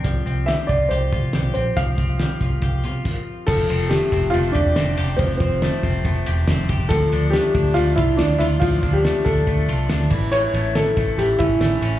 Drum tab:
CC |--------|------x-|x-------|--------|
RD |--------|--------|-xxxxxxx|xxxxxxxx|
HH |xxxxxxxx|xxxxxx--|--------|--------|
SD |--o---o-|--o-----|--oo--o-|--o---o-|
BD |o--o-o--|oo-oo-o-|o--o-o--|oo-oo--o|

CC |--------|--------|--------|
RD |xxxxxxxx|xxxxxxxx|xxxxxxxx|
HH |--------|-------o|p-------|
SD |--o---o-|--oo--o-|--oo--o-|
BD |o--o-o--|oo-oo--o|---o-o--|